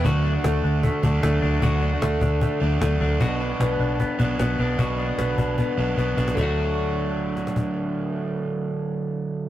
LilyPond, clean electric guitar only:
\new Staff \with { instrumentName = "Clean electric guitar" } { \time 4/4 \key d \major \tempo 4 = 151 <d fis'>8 d'8 a8 d'8 a8 d'8 a8 d'8 | <d fis'>8 d'8 a8 d'8 a8 d'8 a8 d'8 | <b, fis'>8 d'8 b8 d'8 b8 d'8 b8 d'8 | <b, fis'>8 d'8 b8 d'8 b8 d'8 b8 d'8 |
<d fis a d' fis'>1~ | <d fis a d' fis'>1 | }